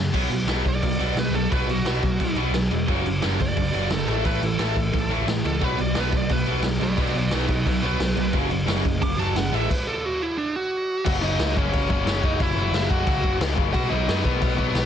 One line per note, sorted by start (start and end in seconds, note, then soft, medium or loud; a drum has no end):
0.00 0.10 F#2 medium
0.00 0.10 C#3 medium
0.12 0.27 B1 medium
0.12 0.28 B2 medium
0.12 0.29 F#3 medium
0.12 0.29 B3 medium
0.12 kick medium
0.12 crash loud
0.12 crash medium
0.30 0.44 B1 medium
0.30 0.45 B2 medium
0.30 0.45 F#3 medium
0.30 crash medium
0.46 0.60 B1 medium
0.46 0.63 B2 medium
0.46 0.63 F#3 medium
0.46 0.64 B3 medium
0.46 snare loud
0.46 crash medium
0.64 0.79 B1 medium
0.64 0.80 B2 medium
0.64 0.80 F#3 medium
0.64 kick medium
0.64 crash medium
0.68 1.17 D5 loud
0.82 0.96 B1 medium
0.82 0.98 B2 medium
0.82 0.98 F#3 medium
0.82 kick loud
0.82 crash medium
0.99 1.12 B1 medium
0.99 1.15 B2 medium
0.99 1.16 F#3 medium
0.99 1.16 B3 medium
0.99 crash medium
1.15 1.29 B1 medium
1.15 1.32 B2 medium
1.15 1.32 F#3 medium
1.15 1.34 B4 loud
1.15 snare loud
1.15 crash medium
1.31 1.46 B1 medium
1.31 1.48 B2 medium
1.31 1.49 F#3 medium
1.31 1.51 A4 medium
1.31 crash medium
1.50 1.65 B1 loud
1.50 1.66 B2 medium
1.50 1.67 F#3 medium
1.50 1.67 B3 loud
1.50 1.68 B4 medium
1.50 kick loud
1.50 crash medium
1.66 1.80 B1 medium
1.66 1.83 B2 medium
1.66 1.84 F#3 medium
1.66 2.35 F#4 medium
1.66 crash medium
1.84 1.98 B1 medium
1.84 2.01 B2 medium
1.84 2.02 F#3 loud
1.84 2.02 B3 medium
1.84 snare loud
1.84 crash medium
2.02 2.16 B1 medium
2.02 2.18 B2 medium
2.02 2.18 F#3 medium
2.02 kick medium
2.02 crash medium
2.20 2.34 B1 medium
2.20 2.35 B2 medium
2.20 2.35 F#3 medium
2.20 kick loud
2.20 crash medium
2.36 2.50 B1 medium
2.36 2.53 B2 medium
2.36 2.53 F#3 medium
2.36 2.53 B3 loud
2.36 crash medium
2.52 2.66 B1 medium
2.52 2.69 B2 medium
2.52 2.69 F#3 medium
2.52 snare loud
2.52 crash medium
2.70 2.84 E1 medium
2.70 2.86 B2 medium
2.70 2.86 F#3 medium
2.70 crash medium
2.88 3.02 F#1 loud
2.88 3.04 F#2 medium
2.88 3.05 C#3 loud
2.88 3.05 F#3 medium
2.88 kick loud
2.88 crash medium
3.06 3.19 F#1 medium
3.06 3.20 F#2 medium
3.06 3.21 C#3 medium
3.06 crash medium
3.21 3.37 F#1 medium
3.21 3.38 F#2 medium
3.21 3.38 C#3 loud
3.21 3.39 F#3 medium
3.21 snare loud
3.21 crash medium
3.40 3.54 F#1 medium
3.40 3.55 F#2 medium
3.40 3.55 C#3 medium
3.40 3.90 D5 medium
3.40 kick medium
3.40 crash medium
3.57 3.70 F#1 loud
3.57 3.72 F#2 medium
3.57 3.72 C#3 medium
3.57 kick loud
3.57 crash medium
3.73 3.87 F#1 loud
3.73 3.89 F#2 loud
3.73 3.90 C#3 medium
3.73 3.90 F#3 loud
3.73 crash medium
3.90 4.04 F#1 loud
3.90 4.06 F#2 medium
3.90 4.06 C#3 medium
3.90 4.08 A4 medium
3.90 snare loud
3.90 crash medium
4.07 4.21 A1 medium
4.07 4.22 A2 medium
4.07 4.24 E3 loud
4.07 4.24 A3 loud
4.07 4.25 A4 medium
4.07 crash medium
4.24 4.39 A1 medium
4.24 4.40 A2 medium
4.24 4.41 E3 medium
4.24 4.41 A3 loud
4.24 4.45 B4 medium
4.24 kick loud
4.24 crash medium
4.42 4.56 A1 medium
4.42 4.57 A2 medium
4.42 4.58 E3 medium
4.42 5.10 A4 loud
4.42 crash medium
4.59 4.73 A1 medium
4.59 4.75 A2 medium
4.59 4.75 E3 loud
4.59 4.76 A3 loud
4.59 snare loud
4.59 crash medium
4.76 4.90 A1 medium
4.76 4.92 A2 medium
4.76 4.92 E3 medium
4.76 kick medium
4.76 crash medium
4.93 5.07 A1 loud
4.93 5.08 A2 medium
4.93 5.09 E3 medium
4.93 kick loud
4.93 crash medium
5.09 5.23 A1 medium
5.09 5.26 A2 medium
5.09 5.26 E3 medium
5.09 5.26 A3 loud
5.09 crash medium
5.26 5.40 A1 medium
5.26 5.43 A2 medium
5.26 5.43 E3 medium
5.26 snare loud
5.26 crash medium
5.45 5.58 C#2 medium
5.45 5.60 A2 medium
5.45 5.60 E3 medium
5.45 5.64 A4 medium
5.45 crash medium
5.61 5.75 B1 medium
5.61 5.77 B2 medium
5.61 5.77 F#3 medium
5.61 5.78 B3 loud
5.61 5.79 B4 loud
5.61 kick loud
5.61 crash medium
5.78 5.93 B1 medium
5.78 5.94 B2 medium
5.78 5.94 F#3 medium
5.78 5.96 D5 medium
5.78 crash medium
5.95 6.10 B1 medium
5.95 6.11 B2 medium
5.95 6.12 F#3 medium
5.95 6.12 B3 loud
5.95 snare loud
5.95 crash medium
6.00 6.14 B4 medium
6.12 6.26 B1 medium
6.12 6.28 B2 medium
6.12 6.28 F#3 medium
6.12 kick medium
6.12 crash medium
6.17 6.31 D5 medium
6.29 6.43 B1 medium
6.29 6.45 B2 medium
6.29 6.45 F#3 medium
6.29 6.64 B4 loud
6.29 kick loud
6.29 crash medium
6.46 6.61 B1 medium
6.46 6.62 B2 loud
6.46 6.63 F#3 loud
6.46 6.63 B3 loud
6.46 crash medium
6.63 6.77 B1 medium
6.63 6.79 B2 medium
6.63 6.79 F#3 medium
6.63 snare loud
6.63 crash medium
6.80 6.94 B1 medium
6.80 6.96 B2 medium
6.80 6.96 F#3 medium
6.80 6.99 B4 medium
6.80 6.98 D5 loud
6.80 crash medium
6.97 7.11 B1 medium
6.97 7.13 B2 medium
6.97 7.13 F#3 medium
6.97 7.14 B3 loud
6.97 kick loud
6.97 crash medium
7.01 7.15 B4 loud
7.01 7.16 D5 loud
7.14 7.28 B1 medium
7.14 7.30 B2 medium
7.14 7.30 F#3 medium
7.14 7.32 B4 medium
7.14 7.33 D5 medium
7.14 crash medium
7.31 7.45 B1 medium
7.31 7.48 B2 loud
7.31 7.48 F#3 medium
7.31 7.48 B3 loud
7.31 7.48 D#4 medium
7.31 7.49 B4 medium
7.31 snare loud
7.31 crash medium
7.49 7.62 B1 medium
7.49 7.64 B2 medium
7.49 7.64 F#3 medium
7.49 7.66 D#4 medium
7.49 7.66 B4 medium
7.49 kick medium
7.49 crash medium
7.66 7.79 B1 loud
7.66 7.81 B2 medium
7.66 7.82 F#3 medium
7.66 7.82 D#4 medium
7.66 7.84 B4 loud
7.66 kick loud
7.66 crash medium
7.82 7.96 B1 medium
7.82 7.98 B2 medium
7.82 7.98 F#3 loud
7.82 7.99 B3 loud
7.82 crash medium
7.86 8.34 B4 loud
7.99 8.13 B1 medium
7.99 8.14 B2 medium
7.99 8.15 F#3 medium
7.99 snare loud
7.99 crash medium
8.15 8.30 B1 medium
8.15 8.31 B2 medium
8.15 8.32 F#3 medium
8.15 crash medium
8.33 8.47 F#1 medium
8.33 8.48 F#2 loud
8.33 8.49 C#3 medium
8.33 8.50 F#3 loud
8.33 kick medium
8.33 crash medium
8.49 8.64 F#1 medium
8.49 8.65 F#2 medium
8.49 8.65 C#3 medium
8.49 crash medium
8.66 8.81 F#1 medium
8.66 8.82 F#2 medium
8.66 8.82 C#3 medium
8.66 8.83 F#3 loud
8.66 snare loud
8.66 crash medium
8.83 8.99 F#1 medium
8.83 8.99 F#2 medium
8.83 8.99 C#3 medium
8.83 kick loud
8.83 crash medium
9.00 9.15 F#1 loud
9.00 9.16 F#2 medium
9.00 9.16 C#3 medium
9.00 9.19 D6 loud
9.00 kick loud
9.00 crash medium
9.18 9.32 F#1 medium
9.18 9.34 F#2 medium
9.18 9.34 C#3 loud
9.18 9.35 F#3 loud
9.18 9.36 A5 medium
9.18 crash medium
9.35 9.49 F#1 medium
9.35 9.51 F#2 medium
9.35 9.51 C#3 medium
9.35 9.55 F#5 loud
9.35 snare loud
9.35 crash medium
9.52 9.65 A1 medium
9.52 9.68 A2 medium
9.52 9.68 E3 medium
9.52 9.69 A3 loud
9.52 9.70 E5 medium
9.52 crash medium
9.70 9.86 B4 loud
9.70 kick medium
9.70 crash medium
9.87 10.05 A4 loud
10.05 10.22 F#4 medium
10.22 10.38 E4 medium
10.38 10.54 D4 medium
10.56 11.04 F#4 loud
11.05 11.21 F#1 loud
11.05 11.23 F#2 loud
11.05 11.21 C#3 loud
11.05 11.21 F#3 loud
11.05 11.11 F#4 medium
11.05 11.13 F#5 loud
11.05 kick loud
11.05 crash loud
11.05 crash medium
11.22 11.36 F#1 medium
11.22 11.38 F#2 medium
11.22 11.38 C#3 medium
11.22 11.40 F#3 loud
11.22 11.53 D#4 medium
11.22 11.57 D#5 loud
11.38 11.54 C#2 medium
11.38 11.56 F#2 medium
11.38 11.54 C#3 medium
11.38 11.54 F#3 medium
11.38 snare loud
11.38 crash medium
11.54 11.71 F#1 medium
11.54 11.70 F#2 medium
11.54 11.70 C#3 loud
11.54 11.72 F#3 loud
11.54 11.87 C#4 medium
11.54 11.89 C#5 medium
11.54 kick loud
11.71 11.87 F#1 loud
11.71 11.89 F#2 medium
11.71 11.87 C#3 loud
11.71 11.88 F#3 loud
11.71 kick loud
11.71 crash medium
11.88 12.04 F#1 loud
11.88 12.03 F#2 medium
11.88 12.04 C#3 medium
11.88 12.06 F#3 loud
11.88 12.21 C#4 medium
11.88 12.24 C#5 loud
11.88 kick loud
12.05 12.20 F#1 medium
12.05 12.22 F#2 loud
12.05 12.21 C#3 loud
12.05 12.22 F#3 loud
12.05 snare loud
12.05 crash medium
12.22 12.38 F#1 medium
12.22 12.38 F#2 medium
12.22 12.38 C#3 medium
12.22 12.40 F#3 loud
12.22 12.39 D#4 medium
12.22 12.41 D#5 medium
12.22 kick loud
12.39 12.55 F#1 loud
12.39 12.55 F#2 loud
12.39 12.55 C#3 loud
12.39 12.55 F#3 loud
12.39 12.88 E4 medium
12.39 12.90 E5 loud
12.39 kick loud
12.39 crash medium
12.55 12.71 F#1 loud
12.55 12.71 F#2 medium
12.55 12.71 C#3 medium
12.55 12.73 F#3 loud
12.72 12.87 F#1 loud
12.72 12.89 F#2 medium
12.72 12.88 C#3 loud
12.72 12.88 F#3 loud
12.72 snare loud
12.72 crash medium
12.89 13.05 F#1 medium
12.89 13.04 F#2 loud
12.89 13.05 C#3 loud
12.89 13.06 F#3 medium
12.89 13.37 F#4 medium
12.89 13.37 F#5 medium
12.89 kick loud
13.06 13.22 C#2 loud
13.06 13.21 F#2 medium
13.06 13.21 C#3 loud
13.06 13.21 F#3 loud
13.06 kick loud
13.06 crash medium
13.21 13.39 F#1 loud
13.21 13.37 F#2 medium
13.21 13.38 C#3 medium
13.21 13.40 F#3 medium
13.21 kick loud
13.38 13.55 C#2 loud
13.38 13.55 F#2 loud
13.38 13.55 C#3 loud
13.38 13.55 F#3 loud
13.38 snare loud
13.38 crash medium
13.55 13.72 F#1 medium
13.55 13.72 F#2 medium
13.55 13.72 C#3 medium
13.55 13.73 F#3 medium
13.55 kick medium
13.73 13.89 B1 medium
13.73 13.91 B2 loud
13.73 13.91 F#3 loud
13.73 13.90 B3 loud
13.73 13.90 F#4 medium
13.73 13.89 F#5 loud
13.73 kick loud
13.73 crash medium
13.90 14.06 B1 medium
13.90 14.07 B2 medium
13.90 14.07 F#3 medium
13.90 14.08 B3 medium
13.90 14.22 D#4 medium
13.90 14.21 D#5 loud
14.07 14.23 F#2 loud
14.07 14.23 B2 medium
14.07 14.23 F#3 medium
14.07 14.22 B3 loud
14.07 snare loud
14.07 crash medium
14.23 14.39 B1 medium
14.23 14.39 B2 medium
14.23 14.41 F#3 loud
14.23 14.40 B3 loud
14.23 14.56 B3 medium
14.23 14.55 B4 medium
14.23 kick medium
14.40 14.56 B1 loud
14.40 14.57 B2 medium
14.40 14.57 F#3 loud
14.40 14.56 B3 loud
14.40 kick loud
14.40 crash medium
14.57 14.73 B1 loud
14.57 14.72 B2 medium
14.57 14.74 F#3 medium
14.57 14.73 B3 medium
14.57 14.86 B3 medium
14.57 14.86 B4 loud
14.57 kick loud
14.73 14.86 B1 loud
14.73 14.86 B2 loud
14.73 14.86 F#3 loud
14.73 14.86 B3 loud
14.73 snare loud
14.73 crash medium